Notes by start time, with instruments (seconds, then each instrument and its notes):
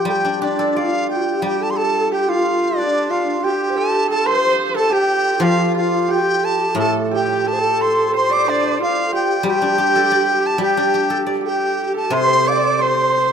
Already playing: guzheng F3, hammered dulcimer F4 A4 C5
0.05 guzheng G3, hammered dulcimer G4, xiao A4, dizi G5
0.13 xiao G4
0.24 guzheng D4
0.41 xiao D4, hammered dulcimer D4, horsehead fiddle D4, guzheng G4, dizi D5
0.59 guzheng A4
0.75 hammered dulcimer F4, horsehead fiddle F4, xiao G4, guzheng D5, dizi F5
0.80 xiao F4
1.09 hammered dulcimer G4, xiao G4, dizi G5
1.42 guzheng G3, hammered dulcimer G4, horsehead fiddle G4, xiao G4, dizi G5
1.61 xiao A4, dizi A5
1.70 dizi C6
1.75 hammered dulcimer A4, horsehead fiddle A4, xiao A4, dizi A5
2.12 horsehead fiddle G4, hammered dulcimer G4, xiao G4, dizi G5
2.28 hammered dulcimer F4, horsehead fiddle F4, xiao F4, dizi F5
2.71 hammered dulcimer F4
2.77 horsehead fiddle D4, hammered dulcimer D4, xiao F4, dizi D5
2.82 xiao D4
3.10 xiao F4, hammered dulcimer F4, dizi F5
3.43 horsehead fiddle G4, xiao G4, hammered dulcimer G4, dizi G5
3.70 xiao C5
3.76 hammered dulcimer A4, xiao A4, dizi A5
4.07 horsehead fiddle A4, xiao A4, hammered dulcimer A4, dizi A5
4.26 hammered dulcimer C5, xiao C5, horsehead fiddle C5, dizi C6
4.74 xiao A4, hammered dulcimer A4, horsehead fiddle A4, dizi A5
4.90 hammered dulcimer G4, xiao G4, horsehead fiddle G4, dizi G5
5.40 guzheng F3, hammered dulcimer F4, horsehead fiddle F4, xiao G4, dizi F5
5.46 xiao F4
5.75 hammered dulcimer F4, xiao G4, dizi F5
5.80 xiao F4
6.08 hammered dulcimer G4, horsehead fiddle G4, xiao G4, dizi G5
6.43 xiao A4, dizi A5
6.75 guzheng A2, hammered dulcimer A4, horsehead fiddle A4, xiao A4, dizi A5
7.11 hammered dulcimer G4, horsehead fiddle G4, dizi G5
7.46 hammered dulcimer A4, xiao A4, horsehead fiddle A4, dizi A5
7.53 xiao C5
7.59 xiao A4
7.81 hammered dulcimer C5, dizi C6
8.14 xiao C5, hammered dulcimer C5, horsehead fiddle C5, dizi C6
8.30 hammered dulcimer D5, xiao D5, dizi D6
8.37 hammered dulcimer D5
8.45 xiao D4, hammered dulcimer D5, dizi D5
8.51 hammered dulcimer D5
8.60 hammered dulcimer D5
8.67 hammered dulcimer D5
8.80 xiao F4, hammered dulcimer F4, horsehead fiddle F4, dizi F5
9.07 xiao A4
9.12 hammered dulcimer G4, xiao G4, dizi G5
9.43 guzheng G3, xiao F#4, hammered dulcimer G4, horsehead fiddle G4
9.48 dizi G5
9.52 hammered dulcimer G4
9.58 guzheng D4, xiao G4, hammered dulcimer G4
9.68 hammered dulcimer G4
9.75 hammered dulcimer G4, guzheng G4
9.82 hammered dulcimer G4
9.89 hammered dulcimer G4
9.96 hammered dulcimer G4, guzheng A4
10.03 hammered dulcimer G4
10.10 hammered dulcimer G4, guzheng D5
10.16 hammered dulcimer G4
10.23 hammered dulcimer G4
10.32 hammered dulcimer G4
10.39 hammered dulcimer G4
10.46 dizi A5
10.58 guzheng G3, hammered dulcimer G4, horsehead fiddle G4, xiao G4
10.63 dizi G5
10.77 guzheng D4
10.94 guzheng G4
11.10 guzheng A4
11.26 guzheng D5
11.35 hammered dulcimer A4
11.41 hammered dulcimer G4, horsehead fiddle G4
11.45 xiao G4 A4, dizi G5
11.94 hammered dulcimer A4, xiao A4, dizi A5
12.10 guzheng C3, hammered dulcimer C5, horsehead fiddle C5, xiao C5, dizi C6
12.19 hammered dulcimer C5
12.27 hammered dulcimer C5
12.34 hammered dulcimer C5
12.41 hammered dulcimer C5
12.47 hammered dulcimer C5, horsehead fiddle D5, xiao F5, dizi D6
12.53 hammered dulcimer C5, xiao D5
12.65 hammered dulcimer C5
12.79 hammered dulcimer C5, horsehead fiddle C5, xiao D5, dizi C6
12.85 xiao C5, hammered dulcimer C5
12.95 hammered dulcimer C5
13.02 hammered dulcimer C5
13.10 hammered dulcimer C5
13.18 hammered dulcimer C5
13.25 hammered dulcimer C5